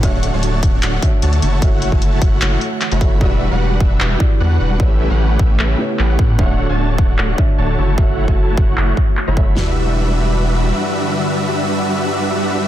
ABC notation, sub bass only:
X:1
M:4/4
L:1/16
Q:1/4=151
K:Edor
V:1 name="Sub bass" clef=bass
D,,,3 D,,,3 D,,,2 D,,,2 z2 D,,2 F,,,2 | F,,,3 F,,,3 F,,,2 F,,,2 z3 F,,,3 | E,,,3 E,,,3 E,,,2 E,,,2 z2 E,,2 E,,,2 | A,,,3 A,,,3 A,,,2 A,,,2 z2 A,,,2 A,,2 |
D,,,3 D,,,3 D,,,2 D,,,2 z2 D,,,2 F,,,2 | F,,,3 F,,,3 F,,,2 F,,,2 z3 F,,,3 | E,,,12 z4 | z16 |]